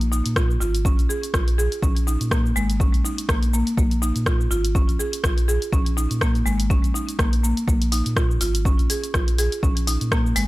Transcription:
Already playing: sub bass A#1
0.01 closed hi-hat, cabasa
0.12 marimba D#4, cabasa
0.26 sub bass A#2, closed hi-hat, cabasa
0.36 marimba F4, kick, cross-stick, cabasa
0.51 cabasa
0.61 sub bass G#1, marimba F4, cabasa
0.75 closed hi-hat, cabasa
0.85 marimba C#4, kick, cabasa
0.99 sub bass A#1, closed hi-hat, cabasa
1.09 marimba G#4, cabasa
1.23 closed hi-hat, cabasa
1.34 sub bass A#1, marimba F4, kick, cross-stick, cabasa
1.48 closed hi-hat, cabasa
1.58 marimba G#4, cabasa
1.72 closed hi-hat, cabasa
1.83 sub bass A#1, marimba C#4, kick, cabasa
1.97 closed hi-hat, cabasa
2.07 marimba D#4, cabasa
2.21 sub bass A#2, closed hi-hat, cabasa
2.31 marimba A#3, kick, cross-stick, cabasa
2.46 cabasa
2.56 sub bass G#1, marimba G#3, cabasa
2.70 closed hi-hat, cabasa
2.80 marimba C#4, kick, cabasa
2.94 sub bass A#1, closed hi-hat, cabasa
3.05 marimba D#4, cabasa
3.18 closed hi-hat, cabasa
3.29 sub bass A#1, marimba A#3, kick, cross-stick, cabasa
3.43 closed hi-hat, cabasa
3.53 marimba A#3, cabasa
3.67 closed hi-hat, cabasa
3.77 sub bass A#1, marimba A#3, kick, cabasa
3.91 closed hi-hat, cabasa
4.02 marimba D#4, cabasa
4.16 sub bass A#2, closed hi-hat, cabasa
4.26 marimba F4, kick, cross-stick, cabasa
4.41 cabasa
4.51 sub bass G#1, marimba F4, cabasa
4.65 closed hi-hat, cabasa
4.75 marimba C#4, kick, cabasa
4.89 sub bass A#1, closed hi-hat, cabasa
4.99 marimba G#4, cabasa
5.13 closed hi-hat, cabasa
5.24 sub bass A#1, marimba F4, kick, cross-stick, cabasa
5.38 closed hi-hat, cabasa
5.48 marimba G#4, cabasa
5.62 closed hi-hat, cabasa
5.72 sub bass A#1, marimba C#4, kick, cabasa
5.86 closed hi-hat, cabasa
5.97 marimba D#4, cabasa
6.11 sub bass A#2, closed hi-hat, cabasa
6.21 marimba A#3, kick, cross-stick, cabasa
6.35 closed hi-hat, cabasa
6.46 sub bass G#1, marimba G#3, cabasa
6.60 closed hi-hat, cabasa
6.70 marimba C#4, kick, cabasa
6.84 sub bass A#1, closed hi-hat, cabasa
6.94 marimba D#4, cabasa
7.09 closed hi-hat, cabasa
7.19 sub bass A#1, marimba A#3, kick, cross-stick, cabasa
7.33 closed hi-hat, cabasa
7.43 marimba A#3, cabasa
7.57 closed hi-hat, cabasa
7.68 sub bass A#1, marimba A#3, kick, cabasa
7.82 closed hi-hat, cabasa
7.92 marimba D#4, open hi-hat, cabasa
8.06 sub bass A#2, closed hi-hat, cabasa
8.16 marimba F4, kick, cross-stick, cabasa
8.31 cabasa
8.41 sub bass G#1, marimba F4, open hi-hat, cabasa
8.55 closed hi-hat, cabasa
8.65 marimba C#4, kick, cabasa
8.79 sub bass A#1, closed hi-hat, cabasa
8.90 marimba G#4, open hi-hat, cabasa
9.04 closed hi-hat, cabasa
9.14 sub bass A#1, marimba F4, kick, cross-stick, cabasa
9.28 closed hi-hat, cabasa
9.38 marimba G#4, open hi-hat, cabasa
9.52 closed hi-hat, cabasa
9.63 sub bass A#1, marimba C#4, kick, cabasa
9.77 closed hi-hat, cabasa
9.87 marimba D#4, open hi-hat, cabasa
10.01 sub bass A#2, closed hi-hat, cabasa
10.12 marimba A#3, kick, cross-stick, cabasa
10.26 cabasa
10.36 sub bass G#1, marimba G#3, open hi-hat, cabasa

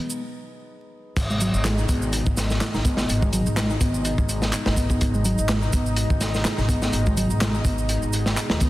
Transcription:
Already playing: analog synth pad B2 G#3, picked electric bass B3, grand piano B3 D#4 G#4 B4
0.10 shaker
1.17 upright bass G#1, analog synth pad B2 G#3 D#4, kick, closed hi-hat, crash, shaker
1.30 picked electric bass G#3, shaker
1.41 picked electric bass F#3, closed hi-hat, shaker
1.54 upright bass G#1, shaker
1.65 picked electric bass G#3, snare, clap, closed hi-hat, shaker
1.78 picked electric bass D#4, shaker
1.89 upright bass G#1, picked electric bass B3, kick, closed hi-hat, shaker
2.02 shaker
2.13 closed hi-hat, shaker
2.26 upright bass G#1, kick, shaker
2.37 snare, closed hi-hat, shaker
2.50 snare, shaker
2.61 snare, clap, closed hi-hat, shaker
2.74 upright bass G#1, picked electric bass D#4, snare, shaker
2.85 picked electric bass B3, kick, closed hi-hat, shaker
2.97 picked electric bass B3, snare, shaker
3.09 upright bass G#1, closed hi-hat, shaker
3.22 picked electric bass G#3, kick, shaker
3.33 picked electric bass F#3, closed hi-hat, shaker
3.46 upright bass G#1, shaker
3.57 picked electric bass G#3, snare, clap, closed hi-hat, shaker
3.70 picked electric bass D#4, shaker
3.81 upright bass G#1, picked electric bass B3, kick, closed hi-hat, shaker
3.94 shaker
4.05 closed hi-hat, shaker
4.18 upright bass G#1, kick, shaker
4.29 closed hi-hat, shaker
4.42 snare, shaker
4.52 clap, closed hi-hat, shaker
4.66 upright bass G#1, picked electric bass D#4, snare, shaker
4.76 picked electric bass B3, kick, closed hi-hat, shaker
4.90 picked electric bass B3, kick, shaker
5.01 upright bass G#1, kick, closed hi-hat, shaker
5.14 picked electric bass G#3, shaker
5.25 picked electric bass F#3, closed hi-hat, shaker
5.38 upright bass G#1, shaker
5.49 picked electric bass G#3, snare, clap, closed hi-hat, shaker
5.62 picked electric bass D#4, shaker
5.73 upright bass G#1, picked electric bass B3, kick, closed hi-hat, shaker
5.86 shaker
5.96 closed hi-hat, shaker
6.10 upright bass G#1, kick, shaker
6.21 snare, closed hi-hat, shaker
6.34 snare, shaker
6.45 snare, clap, closed hi-hat, shaker
6.57 upright bass G#1, picked electric bass D#4, snare, shaker
6.69 picked electric bass B3, kick, closed hi-hat, shaker
6.82 picked electric bass B3, snare, shaker
6.93 upright bass G#1, closed hi-hat, shaker
7.06 picked electric bass G#3, kick, shaker
7.17 picked electric bass F#3, closed hi-hat, shaker
7.30 upright bass G#1, shaker
7.41 picked electric bass G#3, snare, clap, closed hi-hat, shaker
7.54 picked electric bass D#4, shaker
7.65 upright bass G#1, picked electric bass B3, kick, closed hi-hat, shaker
7.78 shaker
7.89 closed hi-hat, shaker
8.02 upright bass G#1, shaker
8.13 closed hi-hat, shaker
8.26 snare, shaker
8.37 clap, closed hi-hat, shaker
8.50 upright bass D#2, picked electric bass D#4, snare, shaker
8.60 picked electric bass B3, kick, closed hi-hat, shaker

